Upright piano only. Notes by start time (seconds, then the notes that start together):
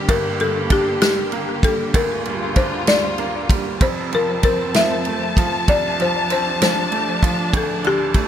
Already playing: F2 G3 F4
0.09 G1 G2
0.39 G3
0.70 D4
1.02 G3
1.32 A#3
1.64 G3
1.95 D1 D2
2.26 G3
2.57 D4
2.88 G3
3.19 A#3
3.50 G3
3.81 F1 F2
4.12 F3
4.44 C4
4.75 F3
5.07 A3
5.38 F3
5.69 C2
6.00 F3
6.31 C4
6.61 F3
6.92 A3
7.23 F3
7.54 D1 D2
7.85 D3
8.15 A3